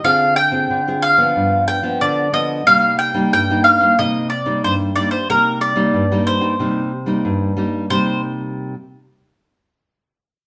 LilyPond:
<<
  \new Staff \with { instrumentName = "Mandolin" } { \time 4/4 \key c \minor \tempo 4 = 92 f''8 g''4 f''4 g''8 d''8 ees''8 | f''8 g''8 g''8 f''8 ees''8 d''8 c''8 d''16 c''16 | bes'8 d''4 c''2 r8 | c''8 r2. r8 | }
  \new Staff \with { instrumentName = "Nylon-string guitar" } { \time 4/4 \key c \minor << { <c' f' aes'>8 r16 <c' f' aes'>8 <c' f' aes'>8 <f b d'>4 <f b d'>8. <f b d'>8 | <g bes ees'>8. <g bes ees'>8 <g bes ees'>8 <g bes ees'>16 <g bes ees'>8 r16 <g bes ees'>8. <g bes ees'>16 r16 | <g bes ees'>8. <g bes ees'>8 <g bes ees'>8 <g bes ees'>16 <g bes ees'>8 r16 <g bes ees'>8. <g bes ees'>8 | <c g bes ees'>8 r2. r8 | } \\ { d4 d4 g,4 d4 | c4 g,4 c4 g,4 | c4 g,4 c4 g,4 | r1 | } >> }
>>